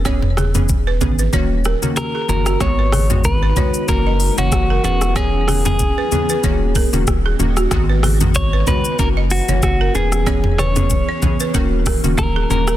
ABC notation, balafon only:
X:1
M:4/4
L:1/16
Q:"Swing 16ths" 1/4=94
K:G#m
V:1 name="Balafon"
c z G z2 B z B c z A z2 G z F | z B G z2 B c z2 d z c z A B z | c z G z2 B z B c z A z2 G z F | z B G z2 B c z2 d z c z A B z |
c z B z2 c z B A z A z2 G z A |]